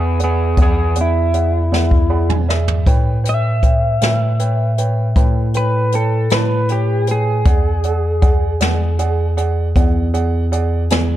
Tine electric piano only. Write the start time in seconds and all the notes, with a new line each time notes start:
Already playing: E2
0.57 E2
1.72 E2
2.87 A2
4.01 A2
5.16 A2
6.31 A2
7.45 E2
8.61 E2
9.76 E2
10.91 E2